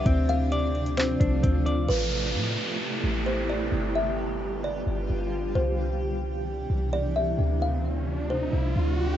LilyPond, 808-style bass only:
\new Staff \with { instrumentName = "808-style bass" } { \clef bass \time 4/4 \key a \minor \tempo 4 = 131 d,2~ d,8 c,8 d,4 | a,,4 a,8 r4 a,,4. | g,,2~ g,,8 g,,8 g,,4 | c,2~ c,8 c,4. |
d,2~ d,8 c,8 d,4 | }